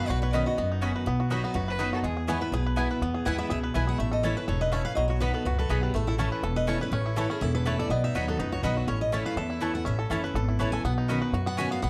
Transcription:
Already playing: B3
0.00 B4
0.09 B1 B2 F#4 B4
0.22 B4 C#5
0.33 B2 D#3 B3 C#4 F#4 D#5 B5
0.46 F#4 D#5
0.57 F#1 F#2 B3
0.72 D#4
0.81 B2 D#3 C#4 F#4 D#5 B5
0.96 B4
1.06 B1 B2 B3
1.20 F#4
1.30 F#3 B3 D#4 F#4 C#5 D#5 B5
1.44 B3 B4
1.54 F#1 F#2 F#4 B4
1.68 B4
1.79 F#3 B3 D#4 F#4 D#5 B5
1.93 F#4 A4
2.03 E2 G#3 G#4
2.17 G#4
2.27 E3 G#3 B3 E4 B4 C#5 G#5
2.41 B3 E4 B4
2.52 B1 B2 G#4 B4
2.66 B4
2.76 E3 G#3 B3 E4 B4 G#5
2.91 B3 E4 B4
3.01 E2 B3
3.14 G#4
3.25 D#2 E3 G#3 B3 E4 B4 F#5 G#5
3.38 B3 E5
3.50 C#2 B2 G#4 E5
3.63 B4
3.74 B1 E3 G#3 B3 E4 B4 G#5
3.87 G#4 F#5
3.98 A1 A2 A3 E5
4.11 A4 D#5
4.23 E3 A3 C#4 E4 C#5 A5
4.37 C#4 E4 B4
4.48 E1 G#2 A4 C#5
4.61 B4 D#5
4.72 A2 A3 C#4 E4 C#5 E5 A5
4.85 B4 F5
4.95 B1 B2 F#3 D#5
5.08 F#4 C#5
5.20 F#3 B3 D#4 F#4 B4 D#5 B5
5.34 A4 B4
5.45 C#2 F#2 F#4 B4
5.59 A4 B4
5.69 B1 F#3 B3 D#4 F#4 G#4 D#5 B5
5.83 G4 B4
5.94 A1 A2 A3 A4
6.07 E4 A4
6.18 E3 A3 C#4 E4 C#5 A5
6.32 B4
6.43 E1 E2 A4
6.56 B4 D#5
6.67 E3 A3 C#4 E4 C#5 A5
6.80 C#4 E4 B4
6.91 A1 A2 C#4 C#5
7.06 E4
7.16 E3 A3 C#4 E4 A4 B4 C#5 A5
7.30 C#4 E4 G#4
7.41 E1 E2 E4 A4
7.55 A4 B4
7.65 E3 A3 C#4 E4 B4 C#5 A5
7.79 A4 D5
7.89 B1 B2 B3 D#5
8.04 D#4 E5
8.15 D#2 F#3 B3 D#4 F#4 C#5 D#5 B5
8.28 B3 A4
8.38 C#2 F#2 D#4 B4
8.52 F#4 C#5
8.63 B1 F#3 B3 D#4 F#4 B4 D#5 B5
8.77 F#4 E5
8.87 A1 A2 C#4 C#5
9.01 D#5
9.12 E3 A3 C#4 E4 C#5 E5 A5
9.25 B4 F5
9.36 E2 A4 E5
9.50 E4
9.60 E3 A3 C#4 E4 B4 C#5 A5
9.74 C#4 E4 A4 F#5
9.85 A1 A2 C#4 E5
9.99 A4
10.10 F#1 E3 A3 C#4 E4 C#5 A5
10.24 C#4 E4 B4
10.34 G#1 E2 A4
10.49 E4
10.59 A1 E3 A3 C#4 E4 B4 C#5 A5
10.72 C#4 E4 A4 G#5
10.83 B1 B2 B3 F#5
10.98 D#4
11.08 B2 D#3 C#4 F#4 D#5 B5
11.22 B4
11.32 F#2 F#4
11.46 B3 F#5
11.57 B2 D#3 C#4 F#4 D#5 G#5 B5
11.71 B3 C#4 F#4 F5
11.82 B1 B2 B3 F#5

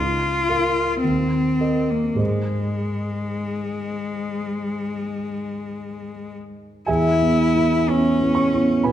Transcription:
Already playing: C#2 F4
0.49 A#4 F5
1.01 D#2 C4
1.61 A#4 D#5
1.91 A#3
2.15 G#2 G#4 C5 D#5
2.21 G#3
6.87 E2 E4 G#4 E5 G#5
7.22 B3 E4
7.56 B3 E4
7.88 B3 C#4 E4
8.21 B3 E4
8.35 C#5 C#6
8.53 B3 E4
8.83 B2 B3 B4 G#5 B5

